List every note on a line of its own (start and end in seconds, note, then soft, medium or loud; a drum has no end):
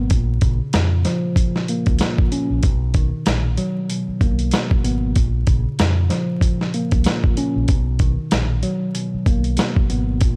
0.00 0.12 B2 medium
0.00 0.11 D#3 medium
0.00 0.10 F#3 medium
0.00 0.11 A#3 medium
0.00 0.11 B3 medium
0.10 0.39 A#1 loud
0.10 0.73 A#2 medium
0.10 kick medium
0.10 closed hi-hat medium
0.41 0.59 A#1 medium
0.41 2.63 C#3 medium
0.41 kick medium
0.41 closed hi-hat medium
0.73 1.03 F2 medium
0.73 1.36 A#2 medium
0.73 snare loud
0.73 closed hi-hat medium
1.05 2.63 F3 loud
1.05 snare soft
1.05 closed hi-hat medium
1.36 1.98 A#2 medium
1.36 kick medium
1.36 closed hi-hat medium
1.56 snare soft
1.68 2.64 A#3 medium
1.68 closed hi-hat medium
1.86 1.99 C#2 medium
1.86 kick loud
1.86 closed hi-hat soft
1.99 2.63 A#2 medium
1.99 snare loud
1.99 closed hi-hat medium
2.18 kick medium
2.32 2.63 C#4 medium
2.32 closed hi-hat medium
2.50 2.62 A#1 medium
2.63 3.09 B1 loud
2.63 3.88 B2 medium
2.63 kick medium
2.63 closed hi-hat medium
2.94 5.16 D#3 medium
2.94 kick medium
2.94 closed hi-hat medium
3.26 3.55 A#1 medium
3.26 snare loud
3.26 closed hi-hat loud
3.57 5.16 F#3 medium
3.57 closed hi-hat medium
3.90 4.51 B2 medium
3.90 closed hi-hat medium
4.08 muted fingered electric bass stroke soft
4.21 4.50 B1 medium
4.21 5.16 A#3 medium
4.21 kick medium
4.21 closed hi-hat medium
4.39 closed hi-hat soft
4.51 5.16 B2 medium
4.51 snare loud
4.51 closed hi-hat medium
4.71 kick medium
4.84 5.13 G#1 medium
4.84 5.16 B3 medium
4.84 closed hi-hat medium
5.16 5.45 A#1 loud
5.16 5.78 A#2 medium
5.16 kick medium
5.16 closed hi-hat medium
5.47 5.64 A#1 medium
5.47 7.68 C#3 medium
5.47 kick medium
5.47 closed hi-hat medium
5.79 6.08 F2 medium
5.79 6.41 A#2 medium
5.79 snare loud
5.79 closed hi-hat loud
6.10 7.68 F3 loud
6.10 snare soft
6.10 closed hi-hat medium
6.41 7.03 A#2 medium
6.41 kick medium
6.41 closed hi-hat medium
6.61 snare soft
6.74 7.69 A#3 medium
6.74 closed hi-hat medium
6.91 7.04 C#2 medium
6.91 kick medium
6.91 closed hi-hat soft
7.04 7.68 A#2 medium
7.04 snare loud
7.04 closed hi-hat medium
7.24 kick medium
7.37 7.69 C#4 medium
7.37 closed hi-hat medium
7.56 7.67 A#1 medium
7.68 8.15 B1 loud
7.68 8.93 B2 medium
7.68 kick medium
7.68 closed hi-hat medium
7.99 10.21 D#3 medium
7.99 kick medium
7.99 closed hi-hat medium
8.31 8.60 A#1 medium
8.31 snare loud
8.31 closed hi-hat medium
8.63 10.21 F#3 medium
8.63 closed hi-hat medium
8.95 9.57 B2 medium
8.95 closed hi-hat medium
9.14 muted fingered electric bass stroke soft
9.26 9.55 B1 medium
9.26 10.21 A#3 medium
9.26 kick loud
9.26 closed hi-hat medium
9.44 closed hi-hat soft
9.57 10.21 B2 medium
9.57 snare loud
9.57 closed hi-hat medium
9.76 kick medium
9.90 10.18 G#1 medium
9.90 10.21 B3 medium
9.90 closed hi-hat medium
10.21 10.36 A#1 loud
10.21 10.36 A#2 medium
10.21 kick medium
10.21 closed hi-hat medium